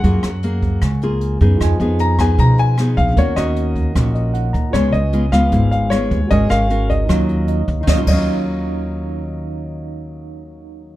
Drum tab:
CC |--------|--------|--------|--------|
HH |xxxxxxxx|xxxxxxxx|xxxxxxxx|xxxxxxxx|
SD |-r--r---|r--r--r-|-r--r---|r--r--r-|
BD |o--oo--o|o--oo--o|o--oo--o|o--oo--o|

CC |--------|-x------|--------|
HH |xxxxxxxx|--------|--------|
SD |-r--r---|o-------|--------|
BD |o--oo--o|oo------|--------|